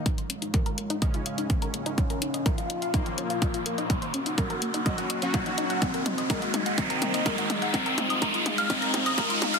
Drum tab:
HH |xxxxxxxxxxxxxxxx|xxxxxxxxxxxxxxxx|xxxxxxxxxxxxxxxx|xxxxxxxxxxxxxxxx|
T2 |o---o---o---o---|o---o---o---o---|o---o---o---o---|o-o-o-o-o-o-o-o-|
BD |o---o---o---o---|o---o---o---o---|o---o---o---o---|o---o---o---o---|

HH |xxxxxxxxxxxxxxxx|
T2 |o-o-o-o-o-o-o-o-|
BD |o---o---o---o---|